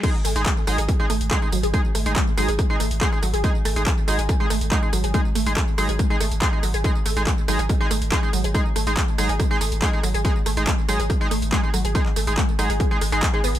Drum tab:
CC |x---------------|----------------|----------------|----------------|
HH |x-oxx-oxx-oxx-ox|x-oxx-oxx-oxx-ox|x-oxx-oxx-oxx-ox|x-oxx-oxx-oxx-ox|
TB |xxxxxxxxxxxxxxxx|xxxxxxxxxxxxxxxx|xxxxxxxxxxxxxxxx|xxxxxxxxxxxxxxxx|
CP |----x-------x---|----x-------x---|----x-------x---|----x-------x---|
SD |r-r-r-r-r-r-r-r-|r-r-r-r-r-r-r-r-|r-r-r-r-r-r-r-r-|r-r-r-r-r-r-r-r-|
BD |o---o---o---o---|o---o---o---o---|o---o---o---o---|o---o---o---o---|

CC |----------------|----------------|----------------|----------------|
HH |x-oxx-oxx-oxx-ox|x-oxx-oxx-oxx-ox|x-oxx-oxx-oxx-ox|x-oxx-oxx-oxx-ox|
TB |xxxxxxxxxxxxxxxx|xxxxxxxxxxxxxxxx|xxxxxxxxxxxxxxxx|xxxxxxxxxxxxxxxx|
CP |----x-------x---|----x-------x---|----x-------x---|-x--x-------x---|
SD |r-r-r-r-r-r-r-r-|r-r-r-r-r-r-r-r-|r-r-r-r-r-r-r-r-|r-r-r-r-r-r-r-r-|
BD |o---o---o---o---|o---o---o---o---|o---o---o---o---|o---o---o---o---|